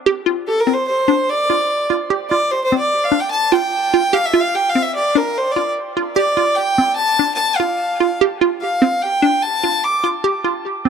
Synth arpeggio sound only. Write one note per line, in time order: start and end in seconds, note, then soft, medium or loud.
0.06 0.18 G4 medium
0.26 0.50 F4 medium
0.67 0.91 C4 medium
1.08 1.32 D4 medium
1.50 1.73 F4 medium
1.90 2.02 F4 medium
2.10 2.22 G4 medium
2.31 2.55 F4 medium
2.72 2.96 C4 medium
3.12 3.35 D4 medium
3.52 3.76 F4 medium
3.94 4.05 F4 medium
4.13 4.25 G4 medium
4.34 4.57 F4 medium
4.75 4.99 C4 medium
5.15 5.39 D4 medium
5.56 5.80 F4 medium
5.97 6.09 F4 medium
6.16 6.28 G4 loud
6.37 6.61 F4 medium
6.78 7.02 C4 medium
7.19 7.43 D4 medium
7.60 7.83 F4 medium
8.00 8.12 F4 medium
8.21 8.33 G4 medium
8.41 8.65 F4 medium
8.82 9.05 C4 medium
9.22 9.46 D4 medium
9.64 9.87 F4 medium
10.04 10.15 F4 medium
10.24 10.36 G4 medium
10.44 10.68 F4 medium
10.85 10.89 C4 medium